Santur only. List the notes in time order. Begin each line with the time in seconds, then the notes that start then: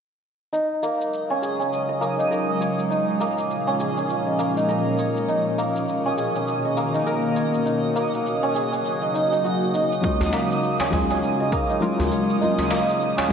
0.53 D#4
0.83 A#3
1.30 C#4
1.42 G#4
1.59 C#4
1.89 D#5
2.01 A#3
2.19 D#4
2.31 A#4
2.61 C#5
2.90 D#4
3.20 A#3
3.67 C#4
3.80 G#4
3.97 C#4
4.26 D#5
4.39 A#3
4.57 D#4
4.68 A#4
4.99 C#5
5.28 D#4
5.58 A#3
6.05 C#4
6.17 G#4
6.36 C#4
6.65 D#5
6.77 A#3
6.94 D#4
7.06 A#4
7.36 C#5
7.65 D#4
7.96 A#3
8.43 C#4
8.55 G#4
8.72 C#4
9.02 D#5
9.14 D#4
9.32 D#4
9.44 F#4
9.74 D#4
10.04 D#4
10.33 A#3
10.80 C#4
10.93 G#4
11.10 C#4
11.40 D#5
11.52 A#3
11.70 D#4
11.82 A#4
12.11 C#5
12.41 D#4
12.71 A#3
13.17 C#4